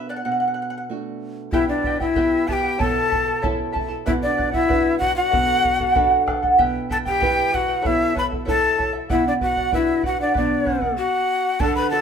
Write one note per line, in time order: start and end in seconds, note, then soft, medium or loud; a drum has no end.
0.00 0.21 B2 medium
0.00 0.22 B3 soft
0.00 0.22 D4 soft
0.00 0.23 F#4 soft
0.09 0.16 D5 medium
0.09 0.15 F#5 medium
0.16 0.23 F#5 medium
0.25 1.49 B2 medium
0.25 0.30 F#5 medium
0.32 0.38 F#5 soft
0.40 0.46 F#5 soft
0.48 0.53 F#5 soft
0.54 0.60 F#5 soft
0.62 0.68 F#5 soft
0.70 0.76 F#5 medium
0.78 0.83 F#5 soft
0.89 1.51 A3 soft
0.89 1.51 D4 soft
0.89 1.52 F#4 soft
1.52 2.76 B2 medium
1.52 1.67 E4 medium
1.52 1.84 E4 medium
1.52 1.85 G4 medium
1.52 1.85 B4 medium
1.52 1.84 E5 medium
1.52 1.68 E5 medium
1.52 1.85 G5 medium
1.52 bombo low medium
1.68 1.98 D4 medium
1.68 1.98 D5 medium
1.84 2.00 E4 medium
1.84 2.00 B4 medium
1.84 2.01 E5 medium
1.84 1.99 G5 medium
1.84 bombo low medium
2.00 2.50 E4 medium
2.00 2.15 E4 soft
2.00 2.15 B4 soft
2.00 2.49 E5 medium
2.00 2.15 G5 medium
2.00 bombo low medium
2.15 2.78 B3 soft
2.15 2.47 E4 medium
2.15 2.78 E4 soft
2.15 2.47 G4 medium
2.15 2.79 G4 medium
2.15 2.48 B4 medium
2.15 2.47 E5 medium
2.15 2.48 G5 medium
2.15 bombo low medium
2.48 2.64 E4 medium
2.48 2.82 G4 medium
2.48 2.63 B4 medium
2.48 2.64 E5 medium
2.48 2.62 G5 medium
2.48 2.54 A5 medium
2.48 bombo low medium
2.53 2.82 G5 medium
2.63 2.77 E4 soft
2.63 2.78 B4 soft
2.63 2.79 G5 medium
2.78 4.02 B2 medium
2.78 3.08 E4 medium
2.78 3.09 A4 medium
2.78 3.44 A4 medium
2.78 3.11 C#5 medium
2.78 3.08 E5 medium
2.78 3.09 A5 medium
2.78 3.44 A5 medium
2.78 bombo low medium
3.09 3.26 E4 medium
3.09 3.26 A4 medium
3.09 3.26 E5 medium
3.09 3.25 A5 medium
3.09 bombo low medium
3.27 3.41 E4 soft
3.27 3.42 A4 soft
3.27 3.42 A5 medium
3.42 4.05 C#4 soft
3.42 3.72 E4 medium
3.42 4.05 E4 soft
3.42 3.72 A4 medium
3.42 4.05 A4 medium
3.42 3.74 C#5 medium
3.42 3.71 E5 medium
3.42 3.72 A5 medium
3.42 bombo low medium
3.72 3.89 E4 medium
3.72 3.88 A4 medium
3.72 3.89 E5 medium
3.72 3.87 A5 medium
3.72 bombo low medium
3.88 4.06 E4 soft
3.88 4.06 A4 soft
3.88 4.05 A5 medium
4.06 5.29 B2 medium
4.06 4.13 E4 medium
4.06 4.35 B4 medium
4.06 4.36 D5 medium
4.06 4.12 E5 medium
4.06 4.37 F#5 medium
4.06 bombo low medium
4.23 4.53 D4 medium
4.23 4.52 D5 medium
4.36 4.53 B4 medium
4.36 4.52 D5 medium
4.36 4.50 F#5 medium
4.36 bombo low medium
4.51 4.98 E4 medium
4.51 4.67 D5 soft
4.51 4.98 E5 medium
4.51 4.67 F#5 medium
4.51 bombo low medium
4.68 5.31 D4 soft
4.68 5.31 F#4 soft
4.68 4.99 B4 medium
4.68 5.31 B4 medium
4.68 5.00 D5 medium
4.68 5.00 F#5 medium
4.68 bombo low medium
4.99 5.15 F#4 medium
4.99 5.17 B4 medium
4.99 5.16 D5 medium
4.99 5.15 F#5 loud
4.99 5.14 F#5 medium
4.99 bombo low medium
5.16 6.23 F#4 medium
5.16 5.31 D5 soft
5.16 5.31 F#5 medium
5.16 6.23 F#5 loud
5.31 6.55 B2 medium
5.31 5.62 F#4 medium
5.31 5.62 A4 medium
5.31 5.63 B4 medium
5.31 5.61 D5 medium
5.31 5.62 F#5 medium
5.31 bombo low medium
5.62 5.79 F#4 medium
5.62 5.78 A4 medium
5.62 5.79 D5 medium
5.62 5.77 F#5 medium
5.62 bombo low medium
5.79 5.94 F#4 soft
5.79 5.94 A4 soft
5.79 5.95 F#5 soft
5.79 bombo low medium
5.94 6.57 D4 soft
5.94 6.26 F#4 medium
5.94 6.57 F#4 soft
5.94 6.26 A4 medium
5.94 6.58 A4 medium
5.94 6.27 B4 medium
5.94 6.25 D5 medium
5.94 6.26 F#5 medium
5.94 bombo low medium
6.26 6.42 F#4 medium
6.26 6.41 A4 medium
6.26 6.43 D5 medium
6.26 6.41 F#5 medium
6.26 bombo rim soft
6.26 bombo low medium
6.42 6.58 F#4 soft
6.42 6.58 A4 medium
6.42 6.59 F#5 medium
6.42 bombo low soft
6.58 7.81 B2 medium
6.58 6.88 E4 medium
6.58 6.90 G4 medium
6.58 6.89 B4 medium
6.58 6.88 E5 medium
6.58 6.90 G5 medium
6.58 bombo low medium
6.89 7.06 E4 medium
6.89 6.97 A4 medium
6.89 7.05 B4 medium
6.89 7.06 E5 medium
6.89 7.04 G5 medium
6.89 6.98 A5 medium
6.89 bombo low medium
7.05 7.19 E4 soft
7.05 7.55 G4 medium
7.05 7.19 B4 soft
7.05 7.20 G5 medium
7.05 7.56 G5 loud
7.05 bombo low soft
7.20 7.83 G3 soft
7.20 7.51 E4 medium
7.20 7.83 E4 soft
7.20 7.52 G4 medium
7.20 7.52 B4 medium
7.20 7.83 B4 medium
7.20 7.50 E5 medium
7.20 7.52 G5 medium
7.20 bombo low medium
7.52 7.68 E4 medium
7.52 7.87 F#4 medium
7.52 7.67 B4 medium
7.52 7.68 E5 medium
7.52 7.88 F#5 medium
7.52 7.67 G5 medium
7.52 bombo low soft
7.68 7.81 E4 soft
7.68 7.81 B4 soft
7.68 7.82 G5 medium
7.82 8.14 E4 medium
7.82 8.15 E4 medium
7.82 8.14 A4 medium
7.82 8.15 B4 medium
7.82 8.13 C#5 medium
7.82 8.14 E5 medium
7.82 bombo low medium
7.86 9.07 B2 medium
7.86 8.17 E5 medium
8.14 8.31 E4 medium
8.14 8.30 A4 medium
8.14 8.23 B4 medium
8.14 8.31 C#5 medium
8.14 8.28 E5 medium
8.14 bombo low medium
8.19 8.25 B5 medium
8.30 8.44 E4 soft
8.30 8.45 A4 soft
8.30 8.44 E5 soft
8.30 bombo low soft
8.45 9.08 C#4 medium
8.45 8.77 E4 medium
8.45 9.08 E4 soft
8.45 8.76 A4 medium
8.45 8.91 A4 medium
8.45 9.09 A4 medium
8.45 8.77 B4 medium
8.45 8.76 C#5 medium
8.45 8.77 E5 medium
8.45 bombo low medium
8.49 8.92 A5 loud
8.77 8.93 E4 medium
8.77 8.92 A4 medium
8.77 8.94 C#5 medium
8.77 8.92 E5 medium
8.77 bombo low medium
8.93 9.10 E4 soft
8.93 9.09 A4 soft
8.93 9.09 E5 medium
9.09 10.32 B2 medium
9.09 9.25 E4 medium
9.09 9.40 B4 medium
9.09 9.40 D5 medium
9.09 9.25 E5 medium
9.09 9.41 F#5 medium
9.09 bombo low medium
9.27 9.33 D4 medium
9.27 9.34 D5 medium
9.41 9.71 F#4 medium
9.41 9.57 B4 medium
9.41 9.56 D5 medium
9.41 9.55 F#5 medium
9.41 9.71 F#5 medium
9.41 bombo low medium
9.56 9.71 D5 soft
9.56 9.72 F#5 soft
9.56 bombo low soft
9.72 10.33 D4 soft
9.72 10.02 E4 medium
9.72 10.34 F#4 soft
9.72 10.01 B4 medium
9.72 10.34 B4 medium
9.72 10.02 D5 medium
9.72 10.02 E5 medium
9.72 10.03 F#5 medium
9.72 bombo low medium
10.02 10.19 F#4 medium
10.02 10.19 B4 medium
10.02 10.19 D5 medium
10.02 10.19 F#5 medium
10.02 bombo low medium
10.07 10.20 F#5 medium
10.20 10.35 D4 medium
10.20 10.33 D5 soft
10.20 10.35 D5 medium
10.20 10.33 F#5 medium
10.34 10.97 B2 medium
10.34 10.95 D4 medium
10.34 10.64 B4 medium
10.34 10.65 D5 medium
10.34 10.94 D5 medium
10.34 10.65 F#5 medium
10.34 bombo low medium
10.65 10.81 B4 medium
10.65 10.82 D5 medium
10.65 10.80 F#5 medium
10.65 bombo low medium
10.82 10.98 D5 soft
10.82 10.97 F#5 medium
10.82 bombo low medium
10.97 11.63 F#4 medium
10.97 11.62 F#5 medium
11.60 12.01 D3 medium
11.60 11.91 A4 medium
11.60 11.76 A4 medium
11.60 11.91 D5 medium
11.60 11.91 F#5 medium
11.60 11.75 A5 medium
11.60 bombo low medium
11.75 11.90 B4 medium
11.75 11.90 B5 medium
11.90 12.01 D4 soft
11.90 12.01 F#4 soft
11.90 12.01 A4 medium
11.90 12.01 D5 medium
11.90 12.01 F#5 medium
11.90 12.01 A5 medium